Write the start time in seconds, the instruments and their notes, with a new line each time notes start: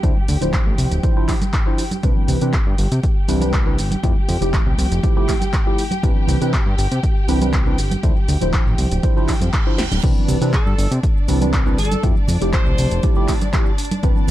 Already playing: violin section G4 G5
0.03 analog synth bass D2, tine electric piano F3 D4 E4 C5, kick, closed hi-hat, shaker
0.17 high conga, maracas
0.28 analog synth bass D2, open hi-hat, low conga, maracas, shaker
0.41 analog synth bass D1, tine electric piano F3 D4 E4 C5, closed hi-hat, shaker, maracas
0.53 kick, clap, closed hi-hat, shaker
0.66 analog synth bass A1
0.78 analog synth bass C2, open hi-hat, shaker, maracas
0.91 analog synth bass D1, closed hi-hat, shaker
1.03 tine electric piano F3 D4 E4 C5, kick, closed hi-hat, shaker
1.16 tine electric piano F3 D4 E4 C5, low conga, maracas
1.28 kick, clap, open hi-hat, shaker
1.42 closed hi-hat, high conga, maracas, shaker
1.53 kick, clap, closed hi-hat, shaker
1.66 tine electric piano F3 D4 E4 C5
1.78 open hi-hat, shaker
1.91 closed hi-hat, high conga, maracas, shaker
2.03 analog synth bass C2, tine electric piano E3 C4 D4 B4, violin section G4 G5, kick, closed hi-hat, shaker
2.16 high conga, maracas
2.28 analog synth bass C2, open hi-hat, low conga, maracas, shaker
2.41 analog synth bass C3, tine electric piano E3 C4 D4 B4, closed hi-hat, shaker, maracas
2.53 kick, clap, closed hi-hat, shaker
2.67 analog synth bass G2
2.78 analog synth bass G1, open hi-hat, shaker, maracas
2.92 analog synth bass C3, closed hi-hat, shaker
3.03 kick, closed hi-hat, shaker
3.16 maracas
3.28 analog synth bass C2, tine electric piano E3 C4 D4 B4, open hi-hat, maracas, shaker
3.41 tine electric piano E3 C4 D4 B4, closed hi-hat, high conga, maracas, shaker
3.53 kick, clap, closed hi-hat, shaker
3.66 tine electric piano E3 C4 D4 B4, low conga, maracas
3.78 analog synth bass G1, open hi-hat, maracas, shaker
3.91 closed hi-hat, high conga, maracas, shaker
4.03 analog synth bass F2, tine electric piano F3 A3 E4 G4, kick, closed hi-hat, maracas, shaker
4.16 high conga, maracas
4.28 analog synth bass F2, open hi-hat, low conga, maracas, shaker
4.41 analog synth bass F1, tine electric piano F3 A3 E4 G4, closed hi-hat, maracas, shaker
4.53 kick, clap, closed hi-hat, shaker
4.66 analog synth bass C2, maracas
4.78 analog synth bass C2, open hi-hat, maracas, shaker
4.91 analog synth bass F1, closed hi-hat, maracas, shaker
5.03 tine electric piano F3 A3 E4 G4, kick, closed hi-hat, shaker, maracas
5.16 tine electric piano F3 A3 E4 G4, low conga, maracas
5.28 kick, clap, open hi-hat, maracas, shaker
5.41 closed hi-hat, high conga, maracas, shaker
5.52 kick, clap, closed hi-hat, maracas, shaker
5.66 tine electric piano F3 A3 E4 G4, maracas
5.78 open hi-hat, shaker, maracas
5.91 closed hi-hat, high conga, maracas, shaker
6.03 analog synth bass C2, tine electric piano E3 C4 D4 B4, kick, closed hi-hat, maracas, shaker
6.17 high conga, maracas
6.28 analog synth bass C2, open hi-hat, low conga, maracas, shaker
6.41 analog synth bass C3, tine electric piano E3 C4 D4 B4, closed hi-hat, maracas, shaker
6.53 kick, clap, closed hi-hat, shaker
6.66 analog synth bass G2, maracas
6.78 analog synth bass G1, open hi-hat, maracas, shaker
6.91 analog synth bass C3, closed hi-hat, maracas, shaker
7.03 kick, closed hi-hat, maracas, shaker
7.17 maracas
7.28 analog synth bass C2, tine electric piano E3 C4 D4 B4, open hi-hat, shaker, maracas
7.41 tine electric piano E3 C4 D4 B4, closed hi-hat, high conga, maracas, shaker
7.53 kick, clap, closed hi-hat, shaker
7.66 tine electric piano E3 C4 D4 B4, low conga, maracas
7.78 analog synth bass G1, open hi-hat, shaker, maracas
7.91 closed hi-hat, high conga, shaker, maracas
8.03 analog synth bass D2, tine electric piano F3 D4 E4 C5, kick, closed hi-hat, maracas, shaker
8.16 high conga, maracas
8.28 analog synth bass D2, open hi-hat, low conga, maracas, shaker
8.41 analog synth bass D1, tine electric piano F3 D4 E4 C5, closed hi-hat, shaker, maracas
8.53 kick, clap, closed hi-hat, shaker, maracas
8.66 analog synth bass A1, maracas
8.78 analog synth bass C2, open hi-hat, shaker, maracas
8.91 analog synth bass D1, closed hi-hat, shaker, maracas
9.03 tine electric piano F3 D4 E4 C5, kick, closed hi-hat, reverse cymbal, shaker, maracas
9.16 tine electric piano F3 D4 E4 C5, low conga, maracas
9.28 kick, clap, open hi-hat, maracas, shaker
9.41 analog synth bass F2, closed hi-hat, high conga, maracas, shaker
9.53 kick, clap, closed hi-hat, maracas, shaker
9.66 tine electric piano F3 D4 E4 C5, maracas
9.78 analog synth bass D1, snare, open hi-hat, shaker, maracas
9.92 analog synth bass D1, closed hi-hat, high conga, shaker, maracas
10.03 analog synth bass C2, tine electric piano E3 C4 D4 B4, violin section D4 D5, kick, closed hi-hat, crash, shaker, maracas
10.17 high conga, maracas
10.28 analog synth bass C2, open hi-hat, low conga, shaker, maracas
10.41 analog synth bass C3, tine electric piano E3 C4 D4 B4, closed hi-hat, maracas, shaker
10.53 horn section A4, kick, clap, closed hi-hat, maracas, shaker
10.66 analog synth bass G2, maracas
10.78 analog synth bass G1, open hi-hat, shaker, maracas
10.91 analog synth bass C3, closed hi-hat, maracas, shaker
11.03 kick, closed hi-hat, shaker, maracas
11.17 maracas
11.28 analog synth bass C2, tine electric piano E3 C4 D4 B4, open hi-hat, maracas, shaker
11.41 tine electric piano E3 C4 D4 B4, closed hi-hat, high conga, maracas, shaker
11.53 kick, clap, closed hi-hat, maracas, shaker
11.66 tine electric piano E3 C4 D4 B4, low conga, maracas
11.78 analog synth bass G1, horn section A4, open hi-hat, maracas, shaker
11.85 closed hi-hat
11.91 closed hi-hat, high conga, maracas, shaker
12.03 analog synth bass F2, tine electric piano F3 A3 E4 G4, kick, closed hi-hat, maracas, shaker
12.16 high conga, maracas
12.28 analog synth bass F2, open hi-hat, low conga, maracas, shaker
12.41 analog synth bass F1, tine electric piano F3 A3 E4 G4, closed hi-hat, maracas, shaker
12.53 horn section C5, kick, clap, closed hi-hat, maracas, shaker
12.66 analog synth bass C2, maracas
12.78 analog synth bass C2, open hi-hat, maracas, shaker
12.90 analog synth bass F1, closed hi-hat, maracas, shaker
13.03 tine electric piano F3 A3 E4 G4, kick, closed hi-hat, maracas, shaker
13.15 tine electric piano F3 A3 E4 G4, low conga, maracas
13.28 kick, clap, open hi-hat, maracas, shaker
13.41 closed hi-hat, high conga, maracas, shaker
13.53 tine electric piano F3 A3 E4 G4, kick, clap, closed hi-hat, maracas, shaker
13.66 maracas
13.78 open hi-hat, maracas, shaker
13.85 closed hi-hat
13.91 closed hi-hat, high conga, maracas, shaker
14.03 analog synth bass C2, tine electric piano E3 C4 D4 B4, kick, closed hi-hat, maracas, shaker
14.16 high conga, maracas
14.28 low conga